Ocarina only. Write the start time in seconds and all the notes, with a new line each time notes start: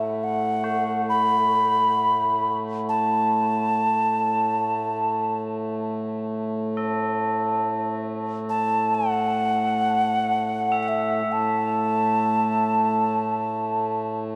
Already playing: E5
0.24 F#5
1.09 B5
2.89 A5
8.49 A5
8.95 F#5
10.83 F#5
10.88 E5
11.32 A5